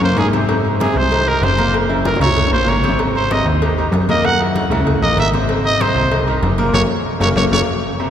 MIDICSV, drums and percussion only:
0, 0, Header, 1, 2, 480
1, 0, Start_track
1, 0, Tempo, 312500
1, 754, Time_signature, 4, 2, 24, 8
1, 12442, End_track
2, 0, Start_track
2, 0, Title_t, "Drums"
2, 36, Note_on_c, 9, 63, 40
2, 189, Note_off_c, 9, 63, 0
2, 271, Note_on_c, 9, 56, 71
2, 272, Note_on_c, 9, 66, 80
2, 272, Note_on_c, 9, 68, 99
2, 279, Note_on_c, 9, 63, 37
2, 425, Note_off_c, 9, 56, 0
2, 425, Note_off_c, 9, 66, 0
2, 425, Note_off_c, 9, 68, 0
2, 433, Note_off_c, 9, 63, 0
2, 512, Note_on_c, 9, 56, 74
2, 519, Note_on_c, 9, 63, 89
2, 666, Note_off_c, 9, 56, 0
2, 672, Note_off_c, 9, 63, 0
2, 749, Note_on_c, 9, 56, 117
2, 753, Note_on_c, 9, 68, 93
2, 758, Note_on_c, 9, 63, 36
2, 902, Note_off_c, 9, 56, 0
2, 906, Note_off_c, 9, 68, 0
2, 912, Note_off_c, 9, 63, 0
2, 990, Note_on_c, 9, 68, 88
2, 1006, Note_on_c, 9, 63, 36
2, 1144, Note_off_c, 9, 68, 0
2, 1160, Note_off_c, 9, 63, 0
2, 1234, Note_on_c, 9, 56, 72
2, 1237, Note_on_c, 9, 66, 62
2, 1237, Note_on_c, 9, 68, 101
2, 1246, Note_on_c, 9, 63, 97
2, 1388, Note_off_c, 9, 56, 0
2, 1391, Note_off_c, 9, 66, 0
2, 1391, Note_off_c, 9, 68, 0
2, 1400, Note_off_c, 9, 63, 0
2, 1485, Note_on_c, 9, 63, 35
2, 1639, Note_off_c, 9, 63, 0
2, 1715, Note_on_c, 9, 68, 91
2, 1716, Note_on_c, 9, 56, 111
2, 1720, Note_on_c, 9, 63, 36
2, 1869, Note_off_c, 9, 68, 0
2, 1870, Note_off_c, 9, 56, 0
2, 1874, Note_off_c, 9, 63, 0
2, 1956, Note_on_c, 9, 68, 104
2, 1960, Note_on_c, 9, 63, 37
2, 2110, Note_off_c, 9, 68, 0
2, 2114, Note_off_c, 9, 63, 0
2, 2194, Note_on_c, 9, 66, 84
2, 2198, Note_on_c, 9, 63, 88
2, 2202, Note_on_c, 9, 56, 70
2, 2348, Note_off_c, 9, 66, 0
2, 2352, Note_off_c, 9, 63, 0
2, 2355, Note_off_c, 9, 56, 0
2, 2432, Note_on_c, 9, 56, 76
2, 2432, Note_on_c, 9, 68, 81
2, 2442, Note_on_c, 9, 63, 88
2, 2586, Note_off_c, 9, 56, 0
2, 2586, Note_off_c, 9, 68, 0
2, 2596, Note_off_c, 9, 63, 0
2, 2668, Note_on_c, 9, 68, 109
2, 2674, Note_on_c, 9, 56, 110
2, 2683, Note_on_c, 9, 63, 33
2, 2821, Note_off_c, 9, 68, 0
2, 2828, Note_off_c, 9, 56, 0
2, 2837, Note_off_c, 9, 63, 0
2, 2908, Note_on_c, 9, 68, 91
2, 2921, Note_on_c, 9, 63, 36
2, 3062, Note_off_c, 9, 68, 0
2, 3075, Note_off_c, 9, 63, 0
2, 3154, Note_on_c, 9, 63, 101
2, 3154, Note_on_c, 9, 66, 64
2, 3157, Note_on_c, 9, 56, 74
2, 3157, Note_on_c, 9, 60, 109
2, 3307, Note_off_c, 9, 63, 0
2, 3308, Note_off_c, 9, 66, 0
2, 3310, Note_off_c, 9, 56, 0
2, 3310, Note_off_c, 9, 60, 0
2, 3318, Note_on_c, 9, 60, 108
2, 3388, Note_on_c, 9, 68, 111
2, 3399, Note_on_c, 9, 56, 71
2, 3405, Note_on_c, 9, 63, 35
2, 3405, Note_on_c, 9, 64, 84
2, 3472, Note_off_c, 9, 60, 0
2, 3476, Note_on_c, 9, 60, 90
2, 3542, Note_off_c, 9, 68, 0
2, 3552, Note_off_c, 9, 56, 0
2, 3559, Note_off_c, 9, 63, 0
2, 3559, Note_off_c, 9, 64, 0
2, 3630, Note_off_c, 9, 60, 0
2, 3633, Note_on_c, 9, 56, 108
2, 3644, Note_on_c, 9, 63, 37
2, 3644, Note_on_c, 9, 64, 76
2, 3786, Note_off_c, 9, 56, 0
2, 3795, Note_on_c, 9, 61, 92
2, 3797, Note_off_c, 9, 63, 0
2, 3797, Note_off_c, 9, 64, 0
2, 3877, Note_on_c, 9, 63, 38
2, 3949, Note_off_c, 9, 61, 0
2, 4030, Note_off_c, 9, 63, 0
2, 4117, Note_on_c, 9, 66, 84
2, 4117, Note_on_c, 9, 68, 101
2, 4120, Note_on_c, 9, 56, 68
2, 4121, Note_on_c, 9, 63, 37
2, 4271, Note_off_c, 9, 66, 0
2, 4271, Note_off_c, 9, 68, 0
2, 4274, Note_off_c, 9, 56, 0
2, 4275, Note_off_c, 9, 63, 0
2, 4355, Note_on_c, 9, 63, 87
2, 4361, Note_on_c, 9, 56, 72
2, 4436, Note_on_c, 9, 61, 99
2, 4508, Note_off_c, 9, 63, 0
2, 4514, Note_off_c, 9, 56, 0
2, 4589, Note_off_c, 9, 61, 0
2, 4595, Note_on_c, 9, 56, 110
2, 4597, Note_on_c, 9, 68, 83
2, 4601, Note_on_c, 9, 63, 36
2, 4748, Note_off_c, 9, 56, 0
2, 4751, Note_off_c, 9, 68, 0
2, 4755, Note_off_c, 9, 63, 0
2, 4843, Note_on_c, 9, 63, 34
2, 4847, Note_on_c, 9, 68, 97
2, 4997, Note_off_c, 9, 63, 0
2, 5000, Note_off_c, 9, 68, 0
2, 5080, Note_on_c, 9, 63, 102
2, 5081, Note_on_c, 9, 56, 73
2, 5088, Note_on_c, 9, 66, 62
2, 5088, Note_on_c, 9, 68, 106
2, 5234, Note_off_c, 9, 63, 0
2, 5235, Note_off_c, 9, 56, 0
2, 5242, Note_off_c, 9, 66, 0
2, 5242, Note_off_c, 9, 68, 0
2, 5331, Note_on_c, 9, 63, 34
2, 5484, Note_off_c, 9, 63, 0
2, 5560, Note_on_c, 9, 56, 111
2, 5561, Note_on_c, 9, 63, 37
2, 5568, Note_on_c, 9, 68, 86
2, 5714, Note_off_c, 9, 56, 0
2, 5715, Note_off_c, 9, 63, 0
2, 5722, Note_off_c, 9, 68, 0
2, 5798, Note_on_c, 9, 63, 38
2, 5807, Note_on_c, 9, 68, 100
2, 5952, Note_off_c, 9, 63, 0
2, 5961, Note_off_c, 9, 68, 0
2, 6030, Note_on_c, 9, 63, 84
2, 6045, Note_on_c, 9, 56, 72
2, 6048, Note_on_c, 9, 66, 85
2, 6184, Note_off_c, 9, 63, 0
2, 6199, Note_off_c, 9, 56, 0
2, 6201, Note_off_c, 9, 66, 0
2, 6279, Note_on_c, 9, 56, 70
2, 6280, Note_on_c, 9, 63, 86
2, 6284, Note_on_c, 9, 68, 83
2, 6433, Note_off_c, 9, 56, 0
2, 6433, Note_off_c, 9, 63, 0
2, 6438, Note_off_c, 9, 68, 0
2, 6518, Note_on_c, 9, 68, 112
2, 6519, Note_on_c, 9, 56, 116
2, 6520, Note_on_c, 9, 63, 36
2, 6671, Note_off_c, 9, 68, 0
2, 6672, Note_off_c, 9, 56, 0
2, 6674, Note_off_c, 9, 63, 0
2, 6755, Note_on_c, 9, 63, 35
2, 6755, Note_on_c, 9, 68, 87
2, 6909, Note_off_c, 9, 63, 0
2, 6909, Note_off_c, 9, 68, 0
2, 6990, Note_on_c, 9, 66, 62
2, 6998, Note_on_c, 9, 63, 101
2, 7005, Note_on_c, 9, 56, 71
2, 7143, Note_off_c, 9, 66, 0
2, 7152, Note_off_c, 9, 63, 0
2, 7159, Note_off_c, 9, 56, 0
2, 7236, Note_on_c, 9, 68, 105
2, 7239, Note_on_c, 9, 63, 38
2, 7239, Note_on_c, 9, 64, 88
2, 7246, Note_on_c, 9, 56, 71
2, 7389, Note_off_c, 9, 68, 0
2, 7393, Note_off_c, 9, 63, 0
2, 7393, Note_off_c, 9, 64, 0
2, 7400, Note_off_c, 9, 56, 0
2, 7478, Note_on_c, 9, 56, 107
2, 7478, Note_on_c, 9, 63, 33
2, 7478, Note_on_c, 9, 64, 72
2, 7631, Note_off_c, 9, 63, 0
2, 7631, Note_off_c, 9, 64, 0
2, 7632, Note_off_c, 9, 56, 0
2, 7721, Note_on_c, 9, 63, 40
2, 7875, Note_off_c, 9, 63, 0
2, 7953, Note_on_c, 9, 66, 93
2, 7953, Note_on_c, 9, 68, 108
2, 7958, Note_on_c, 9, 56, 70
2, 7960, Note_on_c, 9, 63, 37
2, 8107, Note_off_c, 9, 66, 0
2, 8107, Note_off_c, 9, 68, 0
2, 8111, Note_off_c, 9, 56, 0
2, 8114, Note_off_c, 9, 63, 0
2, 8196, Note_on_c, 9, 56, 77
2, 8201, Note_on_c, 9, 63, 83
2, 8350, Note_off_c, 9, 56, 0
2, 8354, Note_off_c, 9, 63, 0
2, 8431, Note_on_c, 9, 56, 113
2, 8434, Note_on_c, 9, 68, 86
2, 8441, Note_on_c, 9, 63, 36
2, 8585, Note_off_c, 9, 56, 0
2, 8588, Note_off_c, 9, 68, 0
2, 8595, Note_off_c, 9, 63, 0
2, 8681, Note_on_c, 9, 68, 91
2, 8684, Note_on_c, 9, 63, 37
2, 8834, Note_off_c, 9, 68, 0
2, 8838, Note_off_c, 9, 63, 0
2, 8915, Note_on_c, 9, 56, 75
2, 8916, Note_on_c, 9, 66, 61
2, 8916, Note_on_c, 9, 68, 102
2, 8924, Note_on_c, 9, 63, 96
2, 9069, Note_off_c, 9, 56, 0
2, 9070, Note_off_c, 9, 66, 0
2, 9070, Note_off_c, 9, 68, 0
2, 9078, Note_off_c, 9, 63, 0
2, 9158, Note_on_c, 9, 63, 33
2, 9312, Note_off_c, 9, 63, 0
2, 9392, Note_on_c, 9, 56, 105
2, 9396, Note_on_c, 9, 68, 90
2, 9404, Note_on_c, 9, 63, 36
2, 9546, Note_off_c, 9, 56, 0
2, 9549, Note_off_c, 9, 68, 0
2, 9558, Note_off_c, 9, 63, 0
2, 9632, Note_on_c, 9, 68, 113
2, 9641, Note_on_c, 9, 63, 40
2, 9786, Note_off_c, 9, 68, 0
2, 9795, Note_off_c, 9, 63, 0
2, 9870, Note_on_c, 9, 56, 69
2, 9870, Note_on_c, 9, 66, 86
2, 9876, Note_on_c, 9, 63, 88
2, 10024, Note_off_c, 9, 56, 0
2, 10024, Note_off_c, 9, 66, 0
2, 10030, Note_off_c, 9, 63, 0
2, 10109, Note_on_c, 9, 56, 77
2, 10109, Note_on_c, 9, 68, 86
2, 10120, Note_on_c, 9, 63, 88
2, 10263, Note_off_c, 9, 56, 0
2, 10263, Note_off_c, 9, 68, 0
2, 10274, Note_off_c, 9, 63, 0
2, 10349, Note_on_c, 9, 56, 107
2, 10351, Note_on_c, 9, 65, 103
2, 10360, Note_on_c, 9, 63, 109
2, 10502, Note_off_c, 9, 56, 0
2, 10505, Note_off_c, 9, 65, 0
2, 10514, Note_off_c, 9, 63, 0
2, 11070, Note_on_c, 9, 65, 104
2, 11076, Note_on_c, 9, 63, 98
2, 11077, Note_on_c, 9, 56, 100
2, 11224, Note_off_c, 9, 65, 0
2, 11229, Note_off_c, 9, 63, 0
2, 11230, Note_off_c, 9, 56, 0
2, 11312, Note_on_c, 9, 65, 105
2, 11319, Note_on_c, 9, 56, 101
2, 11323, Note_on_c, 9, 63, 105
2, 11466, Note_off_c, 9, 65, 0
2, 11472, Note_off_c, 9, 56, 0
2, 11477, Note_off_c, 9, 63, 0
2, 11555, Note_on_c, 9, 65, 104
2, 11563, Note_on_c, 9, 63, 105
2, 11564, Note_on_c, 9, 56, 93
2, 11709, Note_off_c, 9, 65, 0
2, 11717, Note_off_c, 9, 63, 0
2, 11718, Note_off_c, 9, 56, 0
2, 12282, Note_on_c, 9, 63, 38
2, 12284, Note_on_c, 9, 68, 87
2, 12436, Note_off_c, 9, 63, 0
2, 12438, Note_off_c, 9, 68, 0
2, 12442, End_track
0, 0, End_of_file